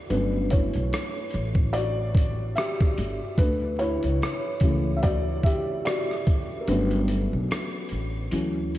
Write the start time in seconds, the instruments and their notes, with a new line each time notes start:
Already playing: felt piano F#4 G4 D5 E5
0.10 upright bass G1, felt piano F#3 A3 B3 C#4 D4 B4, closed hi-hat
0.50 felt piano E4 C#5, kick, closed hi-hat
0.73 upright bass B1, closed hi-hat
0.93 cross-stick, closed hi-hat
1.30 upright bass A1, closed hi-hat
1.55 kick
1.73 felt piano F#4 D5, closed hi-hat
2.15 kick, closed hi-hat
2.55 felt piano G4 E5, cross-stick, closed hi-hat
2.80 kick, cross-stick
2.98 upright bass G1, closed hi-hat
3.38 upright bass D2, felt piano D4 B4, kick, closed hi-hat
3.79 felt piano E4 C#5, closed hi-hat
4.03 upright bass C#2, closed hi-hat
4.22 cross-stick, closed hi-hat
4.60 upright bass C#2, felt piano C#3 E3 A3, kick, closed hi-hat
4.96 felt piano E5
5.03 upright bass D2, felt piano F#4 D5, kick, closed hi-hat
5.43 felt piano G4 E5, kick, closed hi-hat
5.85 felt piano F#4 D5, cross-stick, closed hi-hat
6.11 cross-stick
6.27 kick, closed hi-hat
6.61 felt piano A#4
6.67 upright bass G1, felt piano F#3 A3 B3 C#4 D4 B4, closed hi-hat
6.91 closed hi-hat
7.08 closed hi-hat
7.33 upright bass B1
7.51 cross-stick, closed hi-hat
7.89 upright bass A1, closed hi-hat
8.31 upright bass D2, felt piano E3 F#3 C#4, closed hi-hat
8.75 closed hi-hat